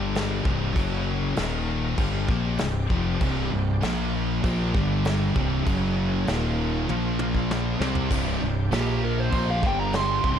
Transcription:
Already playing: G1 G2 D3 G3 D4 G4
0.15 snare, crash
0.45 C1 C2 G2 C3 C4 D5, kick
0.75 F#1 F#2 C#3 F#3 C#4 G#4, kick, crash
1.36 D#1 D#2 A#2 D#3 D#4 A#4 F5, snare, crash
1.98 G1 G2 D3 G3 C4 G4 D5, kick, crash
2.28 A#1 A#2 F3 A#3, kick
2.58 C1 C2 G2, snare, crash
2.90 F1 F2 C3 F3, kick
3.21 C1 C2 G2 C3, kick, crash
3.52 C1 C2 G2
3.81 A#1 A#2 F3 A#3 F4 C5, snare, crash
4.42 A#1 A#2 F3 A#3 C4 G4 D5, kick, crash
4.73 G1 G2 D3 G3 D4, kick
5.05 snare, crash
5.34 C1 C2 G2 C3 C4 D5, kick
5.66 F#1 F#2 C#3 F#3 C#4 G#4, kick, crash
6.27 D#1 D#2 A#2 D#3 A#3 F4, snare, crash
6.88 A#1 A#2 F3 A#3 C5, high tom
7.19 mid tom
7.35 kick
7.51 snare
7.80 C2 C3 G3 C4 G4 D5, snare
7.95 floor tom
8.10 C1 C2 G2 C3 C4 G4 D5, kick, crash
8.41 C1 C2 G2
8.71 A#1 A#2 F3 A#3 F4 G4 C5, snare, crash
9.04 A#4
9.20 C5
9.31 A#1 A#2 F3 A#3 C4 G4 D5, kick, crash
9.51 F5
9.61 G1 G2 D3 G3 D4 G4, kick
9.66 G5
9.80 A#5
9.93 C6, snare, crash
10.22 C1 C2 G2 C3 C4 D5, kick

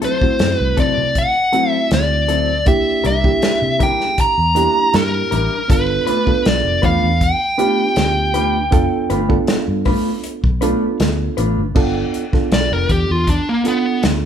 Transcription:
Already playing: A3 C4 E4 F#4
0.02 F#3 C4 E4 A4 C5, closed hi-hat
0.21 A3 C4 E4 F#4, kick
0.39 F#2, snare, closed hi-hat
0.58 C2 B4
0.77 C3 F#3 C4 E4 A4 D5, kick, closed hi-hat
0.98 C3
1.15 F#5, kick, closed hi-hat
1.53 F#3 A3 C4 E4 F#4 A4, closed hi-hat
1.70 E5
1.91 D2 D5, snare, closed hi-hat
2.28 F#3 C4 E4 A4, closed hi-hat
2.66 C2 A#3 D4 E4 G4 E5, kick, closed hi-hat
3.04 C2 G3 D4 E4 A#4 E5, closed hi-hat
3.23 A#3 D4 E4 G4, kick
3.42 snare, closed hi-hat
3.62 C3
3.79 G3 D4 E4 A#4 G5, kick, closed hi-hat
4.00 snare
4.18 A#5, kick, closed hi-hat
4.38 E2
4.55 G3 A#3 D4 E4 G4 A#4, closed hi-hat
4.94 G2 A#4, snare, closed hi-hat
5.31 A1 G3 D4 E4 A#4, closed hi-hat
5.68 G1 B3 D4 F4 A4 B4, kick, closed hi-hat
6.07 A3 D4 F4 B4, closed hi-hat
6.26 B3 D4 F4 A4, kick
6.45 B1 D5, snare, closed hi-hat
6.65 F1
6.82 E2 A3 D4 F4 B4 F5, kick, closed hi-hat
7.03 E2
7.21 G5, kick, closed hi-hat
7.58 A3 B3 D4 F4 G4 B4, closed hi-hat
7.96 D2, snare, closed hi-hat
8.34 A3 D4 F4 B4, closed hi-hat
8.71 F1 B3 D4 F4 A4, kick, closed hi-hat
9.10 G1 A3 D4 F4 B4, closed hi-hat
9.29 B3 D4 F4 A4, kick
9.47 snare, closed hi-hat
9.57 F5
9.68 G2
9.85 A3 D4 F4 B4, kick, open hi-hat
10.24 closed hi-hat
10.44 B1, kick
10.61 A3 B3 D4 F4 A4 B4, closed hi-hat
11.00 D2, snare, closed hi-hat
11.37 A1 A3 D4 F4 B4, closed hi-hat
11.58 G1
11.75 G1 B3 D4 F4 A4, kick, crash
12.14 closed hi-hat
12.33 B3 D4 F4 A4, kick, snare
12.52 B1 D5, snare, closed hi-hat
12.72 F1 A#4
12.89 E2 G4, kick, closed hi-hat
13.10 E2 F4
13.27 D4, kick, closed hi-hat
13.49 A#3
13.64 B3 D4 F4 A4, closed hi-hat
14.03 D2, snare, closed hi-hat

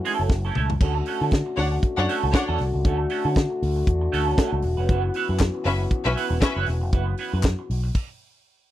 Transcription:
Already playing: E3 A3 C#4 F#4
0.05 A3 C#4 E4 A4, open hi-hat
0.19 F#1 A3 C#4 E4 A4
0.30 F#1, muted clean electric guitar stroke, kick, snare
0.45 A3 C#4 E4 A4
0.55 C#2 A3 C#4 E4 A4, mid tom
0.70 muted clean electric guitar stroke, floor tom
0.79 D2 D3 A3 C#4 F#4 A4, kick, crash
0.95 muted clean electric guitar stroke
1.05 A3 C#4 F#4 A4, open hi-hat
1.21 D3 A3 C#4 F#4 A4
1.31 muted clean electric guitar stroke, kick, snare, closed hi-hat
1.46 muted clean electric guitar stroke
1.57 D2 D4 C#5 F#5, open hi-hat
1.71 muted clean electric guitar stroke
1.82 muted clean electric guitar stroke, kick, closed hi-hat
1.97 F#2 D4 C#5 F#5, muted clean electric guitar stroke
2.09 A3 C#4 F#4 A4, open hi-hat
2.23 C#2 A3 C#4 F#4 A4
2.33 D4 C#5 F#5, kick, snare, closed hi-hat
2.48 E2 A3 C#4 F#4 A4
2.58 C2, muted clean electric guitar stroke, snare, open hi-hat
2.74 C#2, muted clean electric guitar stroke
2.85 D2 A3 C#4 D4 F#4 A4, kick, closed hi-hat
2.99 muted clean electric guitar stroke
3.10 A3 C#4 F#4 A4, open hi-hat
3.24 D3 A3 C#4 F#4 A4
3.35 muted clean electric guitar stroke, kick, snare, closed hi-hat
3.50 muted clean electric guitar stroke
3.63 D2, open hi-hat
3.76 muted clean electric guitar stroke
3.87 E2, muted clean electric guitar stroke, kick, closed hi-hat
4.01 muted clean electric guitar stroke
4.12 D2 A3 C#4 F#4 A4, open hi-hat
4.27 A3 C#4 F#4 A4
4.37 A3 C#4 F#4 A4, kick, snare, closed hi-hat
4.52 C#2, muted clean electric guitar stroke
4.62 E1, muted clean electric guitar stroke, open hi-hat
4.77 F1 A3 C#4 F#4 B4
4.89 F#1 E3 B3 C#4 E4 F#4 B4, kick, closed hi-hat
5.04 muted clean electric guitar stroke
5.14 B3 E4 F#4 B4, open hi-hat
5.29 F#2 B3 E4 F#4 B4
5.39 muted clean electric guitar stroke, kick, snare, clap, closed hi-hat
5.55 muted clean electric guitar stroke
5.65 F#1 C#4 B4 E5, open hi-hat
5.80 muted clean electric guitar stroke
5.91 muted clean electric guitar stroke, kick, closed hi-hat
6.05 B1 C#4 B4 E5, muted clean electric guitar stroke
6.16 B3 E4 F#4 B4, open hi-hat
6.30 E1 B3 E4 F#4 B4
6.41 C#4 B4 E5, kick, snare, clap, closed hi-hat
6.56 F#1 B3 E4 F#4 B4
6.66 E1, muted clean electric guitar stroke, snare, open hi-hat
6.81 F1, muted clean electric guitar stroke
6.93 F#1 B3 E4 F#4 B4, kick, closed hi-hat
7.07 muted clean electric guitar stroke
7.17 B3 E4 F#4 B4, open hi-hat
7.33 F#2 B3 E4 F#4 B4
7.42 muted clean electric guitar stroke, kick, snare, clap, closed hi-hat
7.59 muted clean electric guitar stroke
7.70 B1, open hi-hat
7.84 muted clean electric guitar stroke
7.95 kick, crash

